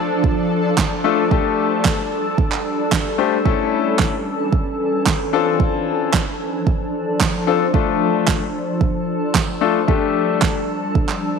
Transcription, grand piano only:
0, 0, Header, 1, 2, 480
1, 0, Start_track
1, 0, Key_signature, -1, "minor"
1, 0, Tempo, 535714
1, 1176, Time_signature, 4, 2, 24, 8
1, 10207, End_track
2, 0, Start_track
2, 0, Title_t, "Grand piano"
2, 0, Program_c, 0, 0
2, 932, Note_on_c, 0, 57, 88
2, 933, Note_on_c, 0, 62, 80
2, 936, Note_on_c, 0, 65, 75
2, 936, Note_on_c, 0, 69, 92
2, 1089, Note_off_c, 0, 57, 0
2, 1090, Note_off_c, 0, 62, 0
2, 1091, Note_off_c, 0, 65, 0
2, 1091, Note_off_c, 0, 69, 0
2, 1173, Note_on_c, 0, 57, 82
2, 1175, Note_on_c, 0, 62, 72
2, 1176, Note_on_c, 0, 67, 71
2, 1177, Note_on_c, 0, 69, 95
2, 1795, Note_off_c, 0, 57, 0
2, 1796, Note_off_c, 0, 62, 0
2, 1797, Note_off_c, 0, 67, 0
2, 1798, Note_off_c, 0, 69, 0
2, 2852, Note_on_c, 0, 57, 85
2, 2853, Note_on_c, 0, 62, 76
2, 2855, Note_on_c, 0, 67, 75
2, 2855, Note_on_c, 0, 72, 90
2, 3009, Note_off_c, 0, 57, 0
2, 3010, Note_off_c, 0, 62, 0
2, 3011, Note_off_c, 0, 67, 0
2, 3011, Note_off_c, 0, 72, 0
2, 3092, Note_on_c, 0, 57, 80
2, 3095, Note_on_c, 0, 61, 73
2, 3095, Note_on_c, 0, 64, 73
2, 3097, Note_on_c, 0, 69, 93
2, 3715, Note_off_c, 0, 57, 0
2, 3716, Note_off_c, 0, 61, 0
2, 3716, Note_off_c, 0, 64, 0
2, 3717, Note_off_c, 0, 69, 0
2, 4775, Note_on_c, 0, 60, 87
2, 4776, Note_on_c, 0, 62, 84
2, 4778, Note_on_c, 0, 65, 81
2, 4780, Note_on_c, 0, 69, 99
2, 5543, Note_off_c, 0, 60, 0
2, 5544, Note_off_c, 0, 62, 0
2, 5545, Note_off_c, 0, 65, 0
2, 5546, Note_off_c, 0, 69, 0
2, 6693, Note_on_c, 0, 60, 84
2, 6694, Note_on_c, 0, 62, 77
2, 6695, Note_on_c, 0, 65, 80
2, 6697, Note_on_c, 0, 69, 97
2, 6850, Note_off_c, 0, 60, 0
2, 6850, Note_off_c, 0, 62, 0
2, 6851, Note_off_c, 0, 65, 0
2, 6851, Note_off_c, 0, 69, 0
2, 6932, Note_on_c, 0, 57, 81
2, 6934, Note_on_c, 0, 62, 74
2, 6936, Note_on_c, 0, 65, 75
2, 6936, Note_on_c, 0, 69, 90
2, 7555, Note_off_c, 0, 57, 0
2, 7556, Note_off_c, 0, 62, 0
2, 7557, Note_off_c, 0, 65, 0
2, 7557, Note_off_c, 0, 69, 0
2, 8610, Note_on_c, 0, 57, 85
2, 8612, Note_on_c, 0, 62, 78
2, 8615, Note_on_c, 0, 65, 76
2, 8615, Note_on_c, 0, 69, 91
2, 8768, Note_off_c, 0, 57, 0
2, 8770, Note_off_c, 0, 62, 0
2, 8771, Note_off_c, 0, 65, 0
2, 8771, Note_off_c, 0, 69, 0
2, 8850, Note_on_c, 0, 57, 82
2, 8852, Note_on_c, 0, 62, 79
2, 8854, Note_on_c, 0, 67, 76
2, 8855, Note_on_c, 0, 69, 86
2, 9474, Note_off_c, 0, 57, 0
2, 9475, Note_off_c, 0, 62, 0
2, 9476, Note_off_c, 0, 67, 0
2, 9476, Note_off_c, 0, 69, 0
2, 10207, End_track
0, 0, End_of_file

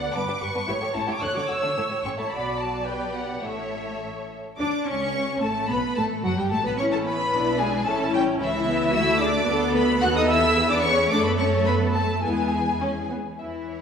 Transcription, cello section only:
0, 0, Header, 1, 2, 480
1, 0, Start_track
1, 0, Tempo, 541516
1, 130, Time_signature, 2, 2, 24, 8
1, 2050, Tempo, 567644
1, 4450, Tempo, 542986
1, 9730, Tempo, 566572
1, 12010, End_track
2, 0, Start_track
2, 0, Title_t, "Cello section"
2, 0, Program_c, 0, 48
2, 0, Note_on_c, 0, 50, 63
2, 112, Note_off_c, 0, 50, 0
2, 130, Note_on_c, 0, 43, 77
2, 178, Note_off_c, 0, 43, 0
2, 253, Note_on_c, 0, 43, 52
2, 300, Note_off_c, 0, 43, 0
2, 372, Note_on_c, 0, 43, 56
2, 420, Note_off_c, 0, 43, 0
2, 491, Note_on_c, 0, 43, 76
2, 538, Note_off_c, 0, 43, 0
2, 608, Note_on_c, 0, 45, 52
2, 656, Note_off_c, 0, 45, 0
2, 726, Note_on_c, 0, 45, 56
2, 774, Note_off_c, 0, 45, 0
2, 847, Note_on_c, 0, 45, 83
2, 895, Note_off_c, 0, 45, 0
2, 965, Note_on_c, 0, 45, 59
2, 1012, Note_off_c, 0, 45, 0
2, 1084, Note_on_c, 0, 50, 77
2, 1132, Note_off_c, 0, 50, 0
2, 1203, Note_on_c, 0, 50, 53
2, 1251, Note_off_c, 0, 50, 0
2, 1320, Note_on_c, 0, 50, 57
2, 1370, Note_off_c, 0, 50, 0
2, 1442, Note_on_c, 0, 50, 75
2, 1491, Note_off_c, 0, 50, 0
2, 1564, Note_on_c, 0, 45, 54
2, 1613, Note_off_c, 0, 45, 0
2, 1684, Note_on_c, 0, 45, 52
2, 1733, Note_off_c, 0, 45, 0
2, 1803, Note_on_c, 0, 45, 73
2, 1852, Note_off_c, 0, 45, 0
2, 1931, Note_on_c, 0, 45, 56
2, 1979, Note_off_c, 0, 45, 0
2, 2047, Note_on_c, 0, 47, 66
2, 2975, Note_off_c, 0, 47, 0
2, 3009, Note_on_c, 0, 45, 58
2, 3808, Note_off_c, 0, 45, 0
2, 3981, Note_on_c, 0, 62, 82
2, 4049, Note_off_c, 0, 62, 0
2, 4217, Note_on_c, 0, 61, 77
2, 4682, Note_off_c, 0, 61, 0
2, 4691, Note_on_c, 0, 57, 75
2, 4929, Note_off_c, 0, 57, 0
2, 4937, Note_on_c, 0, 59, 77
2, 5177, Note_off_c, 0, 59, 0
2, 5177, Note_on_c, 0, 57, 76
2, 5414, Note_on_c, 0, 54, 75
2, 5417, Note_off_c, 0, 57, 0
2, 5535, Note_off_c, 0, 54, 0
2, 5539, Note_on_c, 0, 55, 68
2, 5654, Note_on_c, 0, 57, 79
2, 5658, Note_off_c, 0, 55, 0
2, 5771, Note_on_c, 0, 59, 82
2, 5773, Note_off_c, 0, 57, 0
2, 5891, Note_off_c, 0, 59, 0
2, 5893, Note_on_c, 0, 61, 96
2, 6012, Note_off_c, 0, 61, 0
2, 6017, Note_on_c, 0, 57, 75
2, 6134, Note_off_c, 0, 57, 0
2, 6136, Note_on_c, 0, 59, 82
2, 6615, Note_on_c, 0, 56, 89
2, 6616, Note_off_c, 0, 59, 0
2, 6855, Note_off_c, 0, 56, 0
2, 6855, Note_on_c, 0, 57, 91
2, 7093, Note_on_c, 0, 55, 85
2, 7094, Note_off_c, 0, 57, 0
2, 7163, Note_off_c, 0, 55, 0
2, 7329, Note_on_c, 0, 52, 97
2, 7795, Note_off_c, 0, 52, 0
2, 7800, Note_on_c, 0, 64, 109
2, 8037, Note_on_c, 0, 62, 95
2, 8040, Note_off_c, 0, 64, 0
2, 8515, Note_on_c, 0, 59, 99
2, 8519, Note_off_c, 0, 62, 0
2, 8757, Note_on_c, 0, 66, 110
2, 8760, Note_off_c, 0, 59, 0
2, 8806, Note_off_c, 0, 66, 0
2, 8876, Note_on_c, 0, 63, 92
2, 8992, Note_on_c, 0, 64, 103
2, 8998, Note_off_c, 0, 63, 0
2, 9358, Note_off_c, 0, 64, 0
2, 9359, Note_on_c, 0, 62, 90
2, 9478, Note_on_c, 0, 61, 101
2, 9482, Note_off_c, 0, 62, 0
2, 9719, Note_on_c, 0, 62, 106
2, 9724, Note_off_c, 0, 61, 0
2, 9768, Note_off_c, 0, 62, 0
2, 9839, Note_on_c, 0, 59, 84
2, 9955, Note_on_c, 0, 61, 94
2, 9958, Note_off_c, 0, 59, 0
2, 10195, Note_on_c, 0, 59, 88
2, 10197, Note_off_c, 0, 61, 0
2, 10434, Note_off_c, 0, 59, 0
2, 10438, Note_on_c, 0, 57, 84
2, 10678, Note_on_c, 0, 56, 73
2, 10684, Note_off_c, 0, 57, 0
2, 11396, Note_off_c, 0, 56, 0
2, 11656, Note_on_c, 0, 64, 57
2, 12010, Note_off_c, 0, 64, 0
2, 12010, End_track
0, 0, End_of_file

